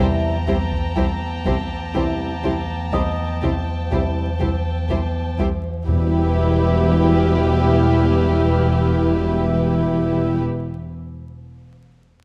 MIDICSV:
0, 0, Header, 1, 13, 480
1, 0, Start_track
1, 0, Tempo, 983607
1, 948, Time_signature, 4, 2, 24, 8
1, 5975, End_track
2, 0, Start_track
2, 0, Title_t, "Violin section"
2, 0, Program_c, 0, 48
2, 0, Note_on_c, 0, 79, 36
2, 0, Note_on_c, 0, 81, 29
2, 0, Note_on_c, 0, 82, 34
2, 1650, Note_off_c, 0, 82, 0
2, 2611, Note_off_c, 0, 81, 0
2, 2612, Note_off_c, 0, 79, 0
2, 2876, Note_on_c, 0, 83, 31
2, 3352, Note_on_c, 0, 89, 29
2, 4530, Note_off_c, 0, 89, 0
2, 4533, Note_off_c, 0, 83, 0
2, 5975, End_track
3, 0, Start_track
3, 0, Title_t, "Music box"
3, 0, Program_c, 1, 10
3, 1430, Note_on_c, 1, 75, 16
3, 1433, Note_on_c, 1, 87, 17
3, 2850, Note_off_c, 1, 75, 0
3, 2851, Note_off_c, 1, 87, 0
3, 5975, End_track
4, 0, Start_track
4, 0, Title_t, "Violin section"
4, 0, Program_c, 2, 48
4, 235, Note_on_c, 2, 72, 26
4, 274, Note_off_c, 2, 72, 0
4, 476, Note_on_c, 2, 72, 25
4, 516, Note_off_c, 2, 72, 0
4, 713, Note_on_c, 2, 72, 24
4, 752, Note_off_c, 2, 72, 0
4, 952, Note_on_c, 2, 72, 25
4, 991, Note_off_c, 2, 72, 0
4, 1188, Note_on_c, 2, 72, 20
4, 1227, Note_off_c, 2, 72, 0
4, 1436, Note_on_c, 2, 72, 20
4, 1475, Note_off_c, 2, 72, 0
4, 1676, Note_on_c, 2, 72, 21
4, 1715, Note_off_c, 2, 72, 0
4, 1915, Note_on_c, 2, 72, 21
4, 1954, Note_off_c, 2, 72, 0
4, 2151, Note_on_c, 2, 72, 20
4, 2190, Note_off_c, 2, 72, 0
4, 2394, Note_on_c, 2, 72, 21
4, 2433, Note_off_c, 2, 72, 0
4, 2634, Note_on_c, 2, 72, 19
4, 2674, Note_off_c, 2, 72, 0
4, 2874, Note_on_c, 2, 71, 40
4, 5075, Note_off_c, 2, 71, 0
4, 5975, End_track
5, 0, Start_track
5, 0, Title_t, "Violin section"
5, 0, Program_c, 3, 48
5, 233, Note_on_c, 3, 67, 25
5, 272, Note_off_c, 3, 67, 0
5, 469, Note_on_c, 3, 67, 26
5, 508, Note_off_c, 3, 67, 0
5, 714, Note_on_c, 3, 67, 23
5, 753, Note_off_c, 3, 67, 0
5, 948, Note_on_c, 3, 67, 26
5, 987, Note_off_c, 3, 67, 0
5, 1191, Note_on_c, 3, 67, 21
5, 1230, Note_off_c, 3, 67, 0
5, 1432, Note_on_c, 3, 67, 22
5, 1471, Note_off_c, 3, 67, 0
5, 1670, Note_on_c, 3, 67, 19
5, 1709, Note_off_c, 3, 67, 0
5, 1911, Note_on_c, 3, 67, 20
5, 1950, Note_off_c, 3, 67, 0
5, 2149, Note_on_c, 3, 67, 19
5, 2188, Note_off_c, 3, 67, 0
5, 2390, Note_on_c, 3, 67, 21
5, 2429, Note_off_c, 3, 67, 0
5, 2632, Note_on_c, 3, 67, 18
5, 2671, Note_off_c, 3, 67, 0
5, 2867, Note_on_c, 3, 67, 40
5, 5069, Note_off_c, 3, 67, 0
5, 5975, End_track
6, 0, Start_track
6, 0, Title_t, "Viola section"
6, 0, Program_c, 4, 48
6, 229, Note_on_c, 4, 64, 25
6, 268, Note_off_c, 4, 64, 0
6, 472, Note_on_c, 4, 64, 25
6, 511, Note_off_c, 4, 64, 0
6, 714, Note_on_c, 4, 64, 22
6, 753, Note_off_c, 4, 64, 0
6, 952, Note_on_c, 4, 64, 23
6, 991, Note_off_c, 4, 64, 0
6, 1193, Note_on_c, 4, 64, 21
6, 1232, Note_off_c, 4, 64, 0
6, 1431, Note_on_c, 4, 64, 21
6, 1470, Note_off_c, 4, 64, 0
6, 1673, Note_on_c, 4, 64, 20
6, 1712, Note_off_c, 4, 64, 0
6, 1912, Note_on_c, 4, 64, 19
6, 1952, Note_off_c, 4, 64, 0
6, 2150, Note_on_c, 4, 64, 18
6, 2189, Note_off_c, 4, 64, 0
6, 2392, Note_on_c, 4, 64, 19
6, 2431, Note_off_c, 4, 64, 0
6, 2629, Note_on_c, 4, 64, 18
6, 2668, Note_off_c, 4, 64, 0
6, 2868, Note_on_c, 4, 64, 36
6, 5070, Note_off_c, 4, 64, 0
6, 5975, End_track
7, 0, Start_track
7, 0, Title_t, "French horn section"
7, 0, Program_c, 5, 60
7, 0, Note_on_c, 5, 55, 32
7, 0, Note_on_c, 5, 64, 33
7, 174, Note_off_c, 5, 55, 0
7, 175, Note_off_c, 5, 64, 0
7, 948, Note_on_c, 5, 55, 25
7, 949, Note_on_c, 5, 64, 25
7, 1132, Note_off_c, 5, 55, 0
7, 1133, Note_off_c, 5, 64, 0
7, 1912, Note_on_c, 5, 64, 22
7, 1913, Note_on_c, 5, 55, 23
7, 2094, Note_off_c, 5, 64, 0
7, 2095, Note_off_c, 5, 55, 0
7, 2872, Note_on_c, 5, 55, 36
7, 2873, Note_on_c, 5, 64, 37
7, 5073, Note_off_c, 5, 55, 0
7, 5074, Note_off_c, 5, 64, 0
7, 5975, End_track
8, 0, Start_track
8, 0, Title_t, "Trombone section"
8, 0, Program_c, 6, 61
8, 0, Note_on_c, 6, 48, 33
8, 0, Note_on_c, 6, 52, 34
8, 176, Note_off_c, 6, 48, 0
8, 176, Note_off_c, 6, 52, 0
8, 947, Note_on_c, 6, 52, 25
8, 949, Note_on_c, 6, 48, 27
8, 1132, Note_off_c, 6, 52, 0
8, 1133, Note_off_c, 6, 48, 0
8, 1907, Note_on_c, 6, 48, 25
8, 1909, Note_on_c, 6, 52, 24
8, 2092, Note_off_c, 6, 48, 0
8, 2093, Note_off_c, 6, 52, 0
8, 2865, Note_on_c, 6, 47, 39
8, 2866, Note_on_c, 6, 52, 39
8, 5066, Note_off_c, 6, 47, 0
8, 5067, Note_off_c, 6, 52, 0
8, 5975, End_track
9, 0, Start_track
9, 0, Title_t, "Synth drone"
9, 0, Program_c, 7, 95
9, 0, Note_on_c, 7, 40, 61
9, 931, Note_off_c, 7, 40, 0
9, 958, Note_on_c, 7, 40, 54
9, 2854, Note_off_c, 7, 40, 0
9, 2873, Note_on_c, 7, 40, 62
9, 5074, Note_off_c, 7, 40, 0
9, 5975, End_track
10, 0, Start_track
10, 0, Title_t, "Timpani"
10, 0, Program_c, 8, 47
10, 2869, Note_on_c, 8, 40, 30
10, 5070, Note_off_c, 8, 40, 0
10, 5975, End_track
11, 0, Start_track
11, 0, Title_t, "Cello section"
11, 0, Program_c, 10, 48
11, 233, Note_on_c, 10, 36, 30
11, 272, Note_off_c, 10, 36, 0
11, 474, Note_on_c, 10, 36, 27
11, 513, Note_off_c, 10, 36, 0
11, 713, Note_on_c, 10, 36, 25
11, 752, Note_off_c, 10, 36, 0
11, 952, Note_on_c, 10, 36, 26
11, 991, Note_off_c, 10, 36, 0
11, 1192, Note_on_c, 10, 36, 24
11, 1231, Note_off_c, 10, 36, 0
11, 1431, Note_on_c, 10, 36, 22
11, 1470, Note_off_c, 10, 36, 0
11, 1671, Note_on_c, 10, 36, 23
11, 1710, Note_off_c, 10, 36, 0
11, 1910, Note_on_c, 10, 36, 25
11, 1949, Note_off_c, 10, 36, 0
11, 2150, Note_on_c, 10, 36, 20
11, 2190, Note_off_c, 10, 36, 0
11, 2391, Note_on_c, 10, 36, 21
11, 2430, Note_off_c, 10, 36, 0
11, 2629, Note_on_c, 10, 36, 19
11, 2668, Note_off_c, 10, 36, 0
11, 2870, Note_on_c, 10, 40, 39
11, 5071, Note_off_c, 10, 40, 0
11, 5975, End_track
12, 0, Start_track
12, 0, Title_t, "Double bass section"
12, 0, Program_c, 11, 48
12, 234, Note_on_c, 11, 36, 31
12, 273, Note_off_c, 11, 36, 0
12, 472, Note_on_c, 11, 36, 28
12, 511, Note_off_c, 11, 36, 0
12, 712, Note_on_c, 11, 36, 26
12, 751, Note_off_c, 11, 36, 0
12, 954, Note_on_c, 11, 36, 27
12, 993, Note_off_c, 11, 36, 0
12, 1196, Note_on_c, 11, 36, 23
12, 1235, Note_off_c, 11, 36, 0
12, 1433, Note_on_c, 11, 36, 23
12, 1472, Note_off_c, 11, 36, 0
12, 1675, Note_on_c, 11, 36, 22
12, 1714, Note_off_c, 11, 36, 0
12, 1912, Note_on_c, 11, 36, 22
12, 1951, Note_off_c, 11, 36, 0
12, 2151, Note_on_c, 11, 36, 23
12, 2190, Note_off_c, 11, 36, 0
12, 2390, Note_on_c, 11, 36, 22
12, 2429, Note_off_c, 11, 36, 0
12, 2629, Note_on_c, 11, 36, 23
12, 2668, Note_off_c, 11, 36, 0
12, 2871, Note_on_c, 11, 28, 40
12, 5073, Note_off_c, 11, 28, 0
12, 5975, End_track
13, 0, Start_track
13, 0, Title_t, "Taiko and cinematic ensemble drums"
13, 350, Note_on_c, 9, 41, 48
13, 399, Note_off_c, 9, 41, 0
13, 711, Note_on_c, 9, 41, 53
13, 759, Note_off_c, 9, 41, 0
13, 2870, Note_on_c, 9, 43, 52
13, 2919, Note_off_c, 9, 43, 0
13, 5975, End_track
0, 0, End_of_file